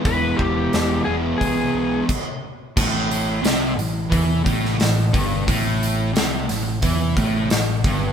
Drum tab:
CC |------------x---|x---------------|----------------|
HH |o---o---o-------|--o-o-o-o-o-o-o-|o-o-o-o-o-o-o-o-|
SD |----o-----------|----o------oo---|----o-o-----o---|
BD |o-o-----o---o---|o-------o-o---o-|o-------o-o---o-|